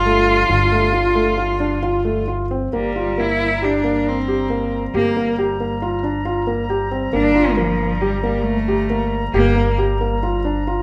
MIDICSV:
0, 0, Header, 1, 5, 480
1, 0, Start_track
1, 0, Key_signature, -2, "minor"
1, 0, Tempo, 442478
1, 538, Time_signature, 5, 2, 24, 8
1, 11744, End_track
2, 0, Start_track
2, 0, Title_t, "Felt piano"
2, 0, Program_c, 0, 0
2, 62, Note_on_c, 0, 57, 66
2, 412, Note_off_c, 0, 57, 0
2, 535, Note_on_c, 0, 65, 83
2, 712, Note_off_c, 0, 65, 0
2, 780, Note_on_c, 0, 57, 67
2, 955, Note_off_c, 0, 57, 0
2, 1009, Note_on_c, 0, 65, 73
2, 1188, Note_off_c, 0, 65, 0
2, 1250, Note_on_c, 0, 57, 69
2, 1429, Note_off_c, 0, 57, 0
2, 1492, Note_on_c, 0, 65, 72
2, 1671, Note_off_c, 0, 65, 0
2, 1735, Note_on_c, 0, 62, 68
2, 1915, Note_off_c, 0, 62, 0
2, 1980, Note_on_c, 0, 65, 77
2, 2160, Note_off_c, 0, 65, 0
2, 2221, Note_on_c, 0, 57, 60
2, 2404, Note_off_c, 0, 57, 0
2, 2472, Note_on_c, 0, 65, 64
2, 2654, Note_off_c, 0, 65, 0
2, 2721, Note_on_c, 0, 60, 66
2, 2899, Note_off_c, 0, 60, 0
2, 2961, Note_on_c, 0, 58, 72
2, 3139, Note_off_c, 0, 58, 0
2, 3208, Note_on_c, 0, 65, 62
2, 3384, Note_off_c, 0, 65, 0
2, 3447, Note_on_c, 0, 58, 68
2, 3800, Note_off_c, 0, 58, 0
2, 3927, Note_on_c, 0, 67, 62
2, 4103, Note_off_c, 0, 67, 0
2, 4165, Note_on_c, 0, 58, 60
2, 4516, Note_off_c, 0, 58, 0
2, 4644, Note_on_c, 0, 67, 58
2, 4820, Note_off_c, 0, 67, 0
2, 4881, Note_on_c, 0, 58, 63
2, 5233, Note_off_c, 0, 58, 0
2, 5365, Note_on_c, 0, 67, 74
2, 5539, Note_off_c, 0, 67, 0
2, 5604, Note_on_c, 0, 58, 64
2, 5777, Note_off_c, 0, 58, 0
2, 5841, Note_on_c, 0, 67, 68
2, 6015, Note_off_c, 0, 67, 0
2, 6077, Note_on_c, 0, 58, 62
2, 6251, Note_off_c, 0, 58, 0
2, 6314, Note_on_c, 0, 65, 66
2, 6488, Note_off_c, 0, 65, 0
2, 6545, Note_on_c, 0, 62, 64
2, 6721, Note_off_c, 0, 62, 0
2, 6783, Note_on_c, 0, 65, 73
2, 6959, Note_off_c, 0, 65, 0
2, 7019, Note_on_c, 0, 58, 64
2, 7195, Note_off_c, 0, 58, 0
2, 7264, Note_on_c, 0, 67, 65
2, 7438, Note_off_c, 0, 67, 0
2, 7498, Note_on_c, 0, 60, 65
2, 7674, Note_off_c, 0, 60, 0
2, 7733, Note_on_c, 0, 58, 77
2, 7911, Note_off_c, 0, 58, 0
2, 7974, Note_on_c, 0, 65, 68
2, 8151, Note_off_c, 0, 65, 0
2, 8213, Note_on_c, 0, 58, 69
2, 8566, Note_off_c, 0, 58, 0
2, 8695, Note_on_c, 0, 67, 67
2, 8871, Note_off_c, 0, 67, 0
2, 8931, Note_on_c, 0, 58, 69
2, 9283, Note_off_c, 0, 58, 0
2, 9416, Note_on_c, 0, 67, 67
2, 9590, Note_off_c, 0, 67, 0
2, 9653, Note_on_c, 0, 58, 67
2, 10005, Note_off_c, 0, 58, 0
2, 10133, Note_on_c, 0, 67, 80
2, 10309, Note_off_c, 0, 67, 0
2, 10368, Note_on_c, 0, 58, 65
2, 10546, Note_off_c, 0, 58, 0
2, 10612, Note_on_c, 0, 67, 69
2, 10789, Note_off_c, 0, 67, 0
2, 10854, Note_on_c, 0, 58, 65
2, 11031, Note_off_c, 0, 58, 0
2, 11096, Note_on_c, 0, 65, 66
2, 11273, Note_off_c, 0, 65, 0
2, 11332, Note_on_c, 0, 62, 64
2, 11511, Note_off_c, 0, 62, 0
2, 11579, Note_on_c, 0, 65, 68
2, 11744, Note_off_c, 0, 65, 0
2, 11744, End_track
3, 0, Start_track
3, 0, Title_t, "Woodwind section"
3, 0, Program_c, 1, 71
3, 0, Note_on_c, 1, 55, 63
3, 0, Note_on_c, 1, 62, 57
3, 0, Note_on_c, 1, 65, 73
3, 2780, Note_off_c, 1, 55, 0
3, 2780, Note_off_c, 1, 62, 0
3, 2780, Note_off_c, 1, 65, 0
3, 2964, Note_on_c, 1, 53, 52
3, 2966, Note_on_c, 1, 82, 61
3, 2967, Note_on_c, 1, 55, 57
3, 11744, Note_off_c, 1, 53, 0
3, 11744, Note_off_c, 1, 55, 0
3, 11744, Note_off_c, 1, 82, 0
3, 11744, End_track
4, 0, Start_track
4, 0, Title_t, "Cello"
4, 0, Program_c, 2, 42
4, 0, Note_on_c, 2, 65, 102
4, 2476, Note_off_c, 2, 65, 0
4, 2962, Note_on_c, 2, 55, 76
4, 3465, Note_on_c, 2, 64, 90
4, 3481, Note_off_c, 2, 55, 0
4, 3944, Note_on_c, 2, 62, 80
4, 3960, Note_off_c, 2, 64, 0
4, 4423, Note_on_c, 2, 60, 70
4, 4440, Note_off_c, 2, 62, 0
4, 5132, Note_off_c, 2, 60, 0
4, 5363, Note_on_c, 2, 58, 90
4, 5805, Note_off_c, 2, 58, 0
4, 7739, Note_on_c, 2, 62, 95
4, 8212, Note_on_c, 2, 53, 79
4, 8228, Note_off_c, 2, 62, 0
4, 8682, Note_on_c, 2, 55, 78
4, 8698, Note_off_c, 2, 53, 0
4, 8916, Note_off_c, 2, 55, 0
4, 8922, Note_on_c, 2, 55, 75
4, 9149, Note_on_c, 2, 57, 76
4, 9165, Note_off_c, 2, 55, 0
4, 9878, Note_off_c, 2, 57, 0
4, 10120, Note_on_c, 2, 58, 94
4, 10573, Note_off_c, 2, 58, 0
4, 11744, End_track
5, 0, Start_track
5, 0, Title_t, "Upright bass"
5, 0, Program_c, 3, 32
5, 0, Note_on_c, 3, 31, 76
5, 494, Note_off_c, 3, 31, 0
5, 539, Note_on_c, 3, 31, 70
5, 2919, Note_off_c, 3, 31, 0
5, 2962, Note_on_c, 3, 31, 61
5, 5317, Note_off_c, 3, 31, 0
5, 5359, Note_on_c, 3, 31, 66
5, 7694, Note_off_c, 3, 31, 0
5, 7733, Note_on_c, 3, 31, 70
5, 10085, Note_off_c, 3, 31, 0
5, 10129, Note_on_c, 3, 31, 68
5, 11744, Note_off_c, 3, 31, 0
5, 11744, End_track
0, 0, End_of_file